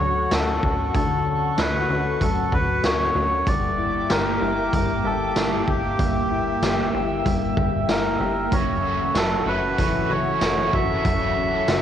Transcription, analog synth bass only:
0.00 D2
0.32 D2
0.63 D2
0.95 D2
1.58 D2
1.89 D2
2.21 D2
2.52 D2
2.84 D2
3.15 D2
3.47 G1
4.10 G1
4.42 G1
4.73 G1
5.04 G1
5.36 G1
5.68 G1
5.99 G1
6.62 G1
6.94 G1
7.26 G1
7.57 G1
7.89 G1
8.20 G1
8.52 F#1
9.15 F#1
9.46 F#1
9.79 F#1
10.10 F#1
10.41 F#1
10.73 F#1
11.05 F#1
11.68 F#1

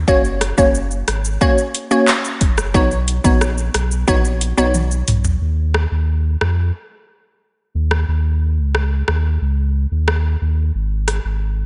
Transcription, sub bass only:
0.08 F#1
0.58 F#1
1.08 G#1
2.41 F#1
2.75 B1
3.25 A#1
3.75 B1
4.08 A#1
4.58 B1
5.08 B1
5.41 D#2
5.91 D#2
6.41 F2
7.75 D#2
8.08 D#2
8.58 C#2
9.08 D#2
9.41 C#2
9.91 D#2
10.41 D#2
10.75 G#1
11.25 G#1

